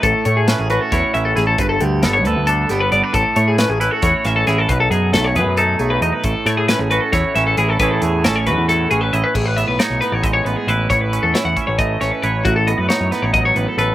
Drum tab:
CC |-------|-------|-------|-------|
HH |xxxxxxx|xxxxxxx|xxxxxxx|xxxxxxx|
SD |--o-o-o|--o--o-|--o--oo|--o----|
BD |o---o--|o------|o---o--|o------|

CC |-------|-------|x------|-------|
HH |xxxxxxx|xxxxxxx|-xxxxxx|xxxxxxx|
SD |-oo-oo-|--o-o--|--o----|--o--o-|
BD |o---o--|o------|o---o--|o--oo--|

CC |-------|
HH |xxxxxxx|
SD |--oo---|
BD |o---o--|